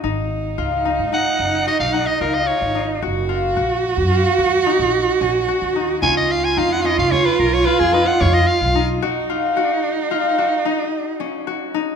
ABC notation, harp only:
X:1
M:11/8
L:1/8
Q:1/4=110
K:G#dor
V:1 name="Harp"
D2 E D D2 F D E2 D | F E F2 E F D2 C F D | C2 D C C2 E D E2 D | F E F2 E F D2 C F D |]